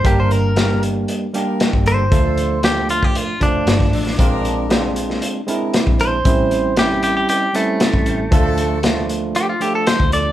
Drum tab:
HH |x-x-x-x-x-x-x-x-|x-x-x-x-x-x-x-o-|x-x-x-x-x-x-x-x-|x-x-x-x-x-x-x-x-|
SD |----o-------o---|----o-------oo-o|----o--o----o---|----o-------o---|
BD |o------------o--|o------o--o--o--|o------------o--|o------------o--|

HH |x-x-x-x-x-x-x-x-|
SD |----o-------o---|
BD |o------------o--|